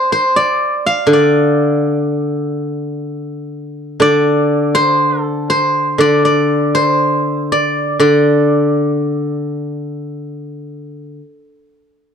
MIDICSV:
0, 0, Header, 1, 2, 480
1, 0, Start_track
1, 0, Tempo, 988468
1, 48, Time_signature, 4, 2, 24, 8
1, 3886, Tempo, 1041667
1, 4846, Tempo, 1094891
1, 5750, End_track
2, 0, Start_track
2, 0, Title_t, "Guzheng"
2, 0, Program_c, 0, 107
2, 0, Note_on_c, 0, 72, 63
2, 0, Note_on_c, 0, 74, 61
2, 58, Note_off_c, 0, 72, 0
2, 60, Note_on_c, 0, 72, 72
2, 174, Note_off_c, 0, 74, 0
2, 176, Note_on_c, 0, 74, 68
2, 420, Note_on_c, 0, 77, 72
2, 518, Note_on_c, 0, 50, 52
2, 548, Note_off_c, 0, 74, 0
2, 550, Note_on_c, 0, 74, 68
2, 1022, Note_off_c, 0, 72, 0
2, 1229, Note_off_c, 0, 77, 0
2, 1447, Note_off_c, 0, 74, 0
2, 1936, Note_off_c, 0, 50, 0
2, 1941, Note_on_c, 0, 50, 56
2, 1951, Note_on_c, 0, 74, 94
2, 2305, Note_on_c, 0, 72, 81
2, 2538, Note_off_c, 0, 72, 0
2, 2538, Note_on_c, 0, 69, 81
2, 2668, Note_off_c, 0, 69, 0
2, 2670, Note_on_c, 0, 72, 75
2, 2847, Note_off_c, 0, 74, 0
2, 2900, Note_off_c, 0, 50, 0
2, 2905, Note_on_c, 0, 50, 49
2, 2916, Note_on_c, 0, 74, 82
2, 3033, Note_off_c, 0, 74, 0
2, 3035, Note_on_c, 0, 74, 75
2, 3274, Note_off_c, 0, 72, 0
2, 3276, Note_on_c, 0, 72, 69
2, 3650, Note_off_c, 0, 74, 0
2, 3652, Note_on_c, 0, 74, 68
2, 3877, Note_off_c, 0, 50, 0
2, 3882, Note_on_c, 0, 50, 48
2, 3884, Note_off_c, 0, 74, 0
2, 3886, Note_on_c, 0, 74, 70
2, 4221, Note_off_c, 0, 72, 0
2, 5310, Note_off_c, 0, 74, 0
2, 5326, Note_off_c, 0, 50, 0
2, 5750, End_track
0, 0, End_of_file